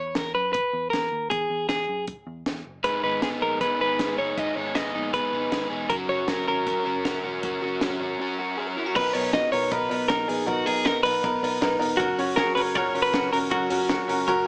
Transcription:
Already playing: E2 C#5
0.15 E2 A#4, kick, snare, closed hi-hat
0.35 F#2 B4
0.53 B4, kick, closed hi-hat
0.73 E2
0.90 E2 A#4, kick, snare, closed hi-hat
1.12 D#2
1.30 E2 G#4, kick, closed hi-hat
1.50 E2
1.69 E2 G#4, kick, snare, closed hi-hat
1.89 F#2
2.07 kick, closed hi-hat
2.27 E2
2.46 E2, kick, snare, closed hi-hat
2.65 F#1
2.83 G#1 G#2 D#3 G#3 B3 D#4 G#4 B4, kick, closed hi-hat
3.03 G#1 G#3 B3 D#4 G#4 B4
3.22 G#1 G#3 B3 D#4 G#4, kick, snare, closed hi-hat
3.41 A#1 G#3 B3 D#4 G#4 A#4
3.61 G#2 D#3 G#3 B3 D#4 G#4 B4, kick, closed hi-hat
3.79 G#1 G#3 B3 D#4 G#4 B4
3.99 G#1 G#3 B3 D#4 G#4, kick, snare, closed hi-hat
4.18 F#1 G#3 B3 D#4 G#4 C#5
4.37 G#1 G#2 D#3 G#3 B3 D#4 G#4 D#5, kick, closed hi-hat
4.55 G#1 G#3 B3 D#4 G#4 C#5
4.75 G#1 G#3 B3 D#4 G#4 D#5, kick, snare, closed hi-hat
4.94 A#1 G#3 B3 D#4 G#4
5.14 G#2 D#3 G#3 B3 D#4 G#4 B4, kick, closed hi-hat
5.32 G#1 G#3 B3 D#4 G#4
5.52 G#1 G#3 B3 D#4 G#4, kick, snare, closed hi-hat
5.70 E1 G#3 B3 D#4 G#4
5.90 F#1 F#3 C#4 F#4 A#4, kick, closed hi-hat
6.08 F#1 C#4 F#4 A#4 C#5
6.28 F#1 F#3 C#4 F#4 A#4, kick, snare, closed hi-hat
6.47 G#1 C#4 F#4 A#4
6.66 F#3 C#4 F#4 A#4, kick, closed hi-hat
6.86 F#1 C#4 F#4 A#4
7.05 F#1 F#3 C#4 F#4 A#4, kick, snare, closed hi-hat
7.24 E1 C#4 F#4 A#4
7.43 F#1 F#3 C#4 F#4 A#4, kick, closed hi-hat
7.62 F#1 C#4 F#4 A#4
7.81 F#1 F#3 C#4 F#4 A#4, kick, snare, closed hi-hat
8.00 G#1 C#4 F#4 A#4
8.19 F#3 C#4 F#4 A#4
8.39 C#4 F#4 A#4
8.57 F#3 C#4 F#4 G#4 A#4
8.67 A#4
8.77 C#4 E4 F#4 A#4
8.86 F#4
8.95 B1 B2 B3 D#4 A#4 B4, kick, crash
9.13 B1 B3 D#4 A#4 C#5, open hi-hat
9.33 B3 D#4 F#4 D#5, kick, snare, ride
9.52 B1 B3 D#4 A#4 C#5, open hi-hat
9.71 B1 B3 D#4 A#4 B4, kick, hi-hat pedal, ride
9.90 B1 B3 D#4 A#4, open hi-hat
10.08 B1 B3 D#4 A#4, kick, snare, hi-hat pedal, ride
10.27 A#1 B3 D#4 G#4 A#4, open hi-hat
10.46 B1 B2 B3 D#4 F#4 A#4, kick, hi-hat pedal, ride
10.66 B1 B3 D#4 G#4 A#4, open hi-hat
10.85 B3 D#4 A#4, kick, snare, ride
11.03 B1 B3 D#4 A#4 B4, open hi-hat
11.23 B1 B3 D#4 A#4, kick, hi-hat pedal, ride
11.43 B1 B3 D#4 A#4, open hi-hat
11.61 B1 B3 D#4 A#4, kick, snare, ride
11.79 E1 B3 D#4 A#4, open hi-hat
11.97 F#1 F#3 C#4 F#4 A#4, kick, hi-hat pedal, ride
12.18 F#1 C#4 F#4 C#5, open hi-hat
12.36 C#4 F#4 G#4 A#4, kick, snare, hi-hat pedal, ride
12.55 F#1 C#4 F#4 A#4 B4, open hi-hat
12.75 F#1 C#4 F#4 A#4 C#5, kick, hi-hat pedal, ride
12.94 F#1 C#4 F#4 A#4, open hi-hat
13.02 B4
13.13 F#1 C#4 F#4 A#4, kick, snare, ride
13.32 E1 C#4 F#4 A#4, open hi-hat
13.50 F#1 F#3 C#4 F#4 A#4, kick, hi-hat pedal, ride
13.70 F#1 C#4 F#4 A#4, open hi-hat
13.89 C#4 F#4 A#4, kick, snare, ride
14.08 F#1 C#4 F#4 A#4, open hi-hat
14.27 F#1 C#4 F#4 A#4, kick, hi-hat pedal, ride

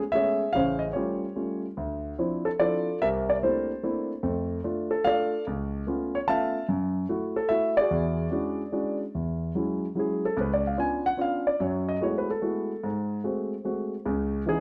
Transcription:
0.12 G#3 A3 B3 C#4 G#4 C#5 E5
0.53 A1 C#3 C5 C#5 F5
0.79 D#5
0.93 G3 A3 C#4 F4 G4 C#5
1.36 G3 A3 C#4 F4
1.77 D2
2.18 F3 C4 D4 E4
2.45 A4
2.59 F3 C4 D4 E4 F4 A4 D5
3.02 C2 G4 A#4 E5
3.30 D5
3.43 A3 A#3 C4 D4 E4 G4 C5
3.83 A3 A#3 C4 D4 E4
4.23 F2 A3
4.64 A3 D4 F4
4.91 A4
5.04 A3 D4 F4 A4 D5 F5
5.47 C#2
5.87 A3 B3 C#4 F4
6.15 C#5
6.28 A3 B3 C#4 F4 E5 F5 A5
6.69 F#2
7.09 A3 E4 F#4
7.36 A4
7.49 A3 E4 F#4 E5
7.77 F#4 D5
7.81 G#4
7.91 E2
8.31 G#3 C#4 D4 E4 F#4
8.72 G#3 C#4 D4 E4 F#4
9.15 E2
9.55 F#3 G#3 C#4 E4
9.95 F#3 G#3 C#4 E4
9.99 G#4
10.25 A4
10.37 C#2 B4
10.54 D5
10.67 F5
10.77 B3 C#4 D4 F4 G#5
11.06 F#5
11.17 B3 C#4 D4 F4
11.21 F5
11.47 D5
11.60 F#2 F#3 C#5
11.89 D#5
12.01 G#3 A3 B3 E4 F#4 C#5
12.18 B4
12.30 A4
12.42 G#3 A3 B3 E4 F#4
12.84 G#2
13.24 G#3 A3 C4 F#4
13.65 G#3 A3 C4 F#4
14.06 C#2 C#3
14.46 E3 B3 C#4 D#4 G#4

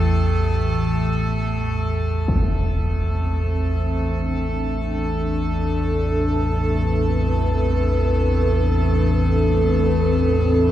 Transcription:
Already playing: A1 E2 A3 A4
2.27 A1 E2 A3 C4 A4, impact
3.94 D4
4.62 A4
6.06 B4

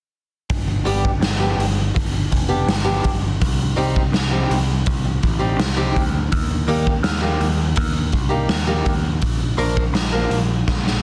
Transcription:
0.50 G1, kick, open hi-hat
0.67 muted steel-string acoustic guitar stroke
0.84 G1 G3 B3 D4 G4, open hi-hat
1.05 kick
1.20 G1, muted steel-string acoustic guitar stroke, snare, open hi-hat
1.39 G3 B3 D4 G4
1.57 G1, open hi-hat
1.94 G1, muted steel-string acoustic guitar stroke, kick, open hi-hat
2.12 muted steel-string acoustic guitar stroke
2.32 F1, kick, open hi-hat
2.49 G3 B3 D4 G4
2.66 G1, snare, open hi-hat
2.84 G3 B3 D4 G4
3.04 G1, kick, open hi-hat
3.40 C2, kick, open hi-hat
3.59 muted steel-string acoustic guitar stroke
3.76 C2 G3 C4 D#4 G4, open hi-hat
3.96 kick
4.12 C2, muted steel-string acoustic guitar stroke, snare, open hi-hat
4.31 G3 C4 D#4 G4
4.50 C2, open hi-hat
4.86 C2, muted steel-string acoustic guitar stroke, kick, open hi-hat
5.05 muted steel-string acoustic guitar stroke
5.23 A1, kick, open hi-hat
5.39 G3 C4 D#4 G4
5.58 C2, snare, open hi-hat
5.77 G3 C4 D#4 G4
5.96 D2, kick, open hi-hat
6.32 D#2, kick, open hi-hat
6.50 muted steel-string acoustic guitar stroke
6.67 D#2 G3 A#3 D#4 G4, open hi-hat
6.87 kick
7.03 D#2, muted steel-string acoustic guitar stroke, snare, open hi-hat
7.21 G3 A#3 D#4 G4
7.40 D#2, open hi-hat
7.76 D#2, muted steel-string acoustic guitar stroke, kick, open hi-hat
7.93 muted steel-string acoustic guitar stroke
8.12 C2, kick, open hi-hat
8.29 G3 A#3 D#4 G4
8.49 D#2, snare, open hi-hat
8.67 G3 A#3 D#4 G4
8.86 D#2, kick, open hi-hat
9.22 A#1, kick, open hi-hat
9.39 muted steel-string acoustic guitar stroke
9.57 A#1 F3 A#3 D4 A#4, open hi-hat
9.77 kick
9.93 A#1, muted steel-string acoustic guitar stroke, snare, open hi-hat
10.12 F3 A#3 D4 A#4
10.30 A#1, open hi-hat
10.68 A#1, muted steel-string acoustic guitar stroke, kick, snare
10.86 muted steel-string acoustic guitar stroke, snare

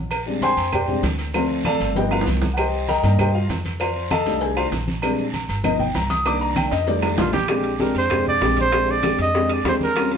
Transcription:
Already playing: A#1
0.11 cowbell, high conga, low agogo, long guiro, claves, maracas
0.26 G3 G#3 C4 D4, high conga, maracas
0.42 C5 G5 G#5 C6, cowbell, high conga, low timbale, low agogo, short guiro, maracas
0.57 F2, cowbell, high conga, low agogo, short guiro, maracas
0.72 G4 C5 D5 G5, cowbell, high conga, low conga, low agogo, long guiro, claves, maracas
0.88 G3 G#3 C4 D4, high conga, low conga, maracas
1.03 D2, cowbell, high conga, low timbale, low agogo, short guiro, maracas
1.18 cowbell, low agogo, short guiro, maracas
1.33 F3 A3 C4 F4 C5 D5 F5, cowbell, high conga, low agogo, long guiro, claves, maracas
1.49 high conga, maracas
1.64 A4 D5 F5 A5, cowbell, high conga, low timbale, low agogo, short guiro, claves, maracas
1.80 G1, cowbell, high conga, low agogo, short guiro, maracas
1.95 F3 B3 D#4 G4 B4 D#5 G5, cowbell, high conga, long guiro, maracas
2.11 F4 A#4 B4 F5, high conga, high timbale, low agogo, claves, maracas
2.21 low timbale
2.26 C2, cowbell, high conga, low agogo, short guiro, maracas
2.42 high conga, low timbale, short guiro, maracas
2.54 F#5, high conga, low agogo, maracas
2.58 G4 C5 D#5 G5, cowbell, long guiro, claves
2.73 high conga, maracas
2.88 A#4 D#5 G5 A#5, cowbell, high conga, low timbale, low agogo, short guiro, maracas
3.03 G2 D#3 A#3 D4, cowbell, high conga, low agogo, short guiro, maracas
3.18 G4 C5 D#5 G5, cowbell, high conga, low conga, low agogo, long guiro, claves, maracas
3.35 F4 F5, high conga, maracas
3.49 F2, cowbell, high conga, low timbale, low agogo, short guiro, maracas
3.65 cowbell, high conga, low agogo, short guiro, maracas
3.80 F4 C5 D5 F5, cowbell, high conga, low agogo, long guiro, claves, maracas
3.96 high conga, maracas
4.11 A4 D#5 F5 A5, cowbell, high conga, low timbale, low agogo, short guiro, claves, maracas
4.26 C2 D#3 G3 A3 D4, cowbell, high conga, low agogo, short guiro, maracas
4.41 G#4 G#5, cowbell, high conga, long guiro, maracas
4.57 F4 C5 D5 F5, high conga, low agogo, claves, maracas
4.71 A#1, cowbell, high conga, low timbale, low agogo, short guiro, maracas
4.87 high conga, short guiro, maracas
5.02 G3 G#3 C4 D4, cowbell, high conga, low agogo, long guiro, claves, maracas
5.18 high conga, maracas
5.33 cowbell, high conga, low timbale, low agogo, short guiro, maracas
5.49 G1, cowbell, high conga, low agogo, short guiro, maracas
5.64 F3 B3 D#4 D#5, cowbell, high conga, low conga, low agogo, long guiro, claves, maracas
5.79 G5, high conga, low conga, maracas
5.95 C2 A#5, cowbell, high conga, low timbale, low agogo, short guiro, maracas
6.10 D#6, cowbell, high conga, low agogo, short guiro, maracas
6.25 D#3 A#3 D4 D6, cowbell, high conga, low agogo, long guiro, claves, maracas
6.41 A#5, high conga, maracas
6.56 G5, cowbell, high conga, low timbale, low agogo, short guiro, claves, maracas
6.67 D5, maracas
6.71 F2 D#5, cowbell, high timbale, low agogo, short guiro
6.86 D#3 G3 A3 D4 D5, cowbell, high conga, long guiro, maracas
7.02 high bongo, high conga, low timbale, low agogo, claves, maracas
7.17 A#1 F4, cowbell, low bongo, high conga, low timbale, low agogo, short guiro, maracas
7.33 G4, low bongo, high conga, low timbale, short guiro, maracas
7.48 G#3 C4 D4 G4, high bongo, high conga, high timbale, long guiro, claves
7.64 high conga, high timbale
7.79 G#3 C4 D4 G4 A#4, high bongo, high conga, low timbale, short guiro
7.95 F2 C5, high conga, high timbale, short guiro
8.10 G#3 C4 D4 G4, high bongo, high conga, low conga, high timbale, long guiro, claves
8.26 D5, high conga, low conga
8.41 A#1 G#3 C4 D4 G4, high bongo, low bongo, high conga, high timbale, low timbale, short guiro
8.56 C5, high conga, high timbale, short guiro
8.72 G#3 C4 D4 G4, high bongo, high conga, high timbale, long guiro, claves
8.88 D5, high bongo, high conga
9.03 G#3 C4 D4 G4, high bongo, high conga, high timbale, low timbale, short guiro, claves
9.18 F2 D#5, high conga, high timbale, short guiro
9.34 G#3 C4 D4 G4, high bongo, high conga, long guiro
9.50 D5, high bongo, high conga, high timbale, claves
9.64 D#2 G#3 C4 D4 G4 C5, high bongo, low bongo, high conga, high timbale, low timbale, short guiro
9.80 A#4, high bongo, high conga, short guiro
9.96 G3 C4 C#4 F4, high bongo, high conga, high timbale, long guiro, claves
10.12 high conga, high timbale

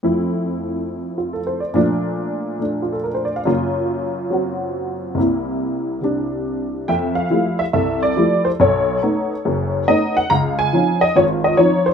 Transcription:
0.03 F2 F3 A3 E4
1.18 F4
1.33 A4
1.47 C5
1.60 D5
1.74 A#2 F3 A3 D4
2.59 A3 D4
2.82 F4
2.93 A4
3.04 A#4
3.14 C5
3.25 D5
3.36 F5
3.45 F#2 C#3 A#3 F4
4.30 F#3 C4 F#4
5.15 C2 C3 A#3
5.20 E4
6.01 C3 G3 D4
6.88 F2 E5 G5
7.15 F5
7.30 F3 G3 A3 E4
7.59 E5
7.73 C2 A4 E5
8.03 D5
8.17 F3 G3 A3 E4
8.45 C5
8.60 B1 A4 C#5
9.02 A3 B3 C#4 D#4
9.45 F#1 F#2
9.88 A3 B3 C#4 D#4 D#5
10.17 F#5
10.30 C#2 F5 A#5
10.59 G#5
10.73 F3 C4 C#4 D#4
11.01 D#5
11.16 G#1 F4 C#5
11.44 D#5
11.57 F3 C4 C#4 D#4 C#5
11.86 C5

